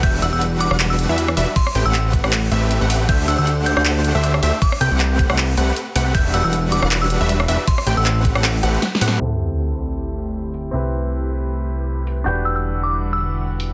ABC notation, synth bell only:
X:1
M:4/4
L:1/16
Q:"Swing 16ths" 1/4=157
K:Ador
V:1 name="Synth bell"
g' z e' e' z2 d' z2 e' z6 | c'3 e' e' z8 z3 | g' z e' e' z2 g' g' z8 | d' z g'4 z8 z2 |
g' z e' e' z2 d' z2 e' z6 | c'3 e' e' z8 z3 | z16 | z16 |
g' z e' e' z2 d' z2 e' z6 |]